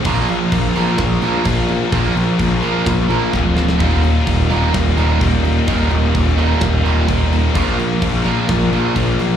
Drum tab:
CC |x-x-x-x-x-x-x-x-|x-x-x-x-x-x-----|x-x-x-x-x-x-x-x-|x-x-x-x-x-x-x-x-|
SD |--------o-------|--------o---o-oo|--------o-------|--------o-------|
BD |o---o---o---o---|o---o---o---o---|o---o---o---o---|o---o---o---o---|

CC |x-x-x-x-x-x-x-x-|
SD |--------o-------|
BD |o---o---o---o---|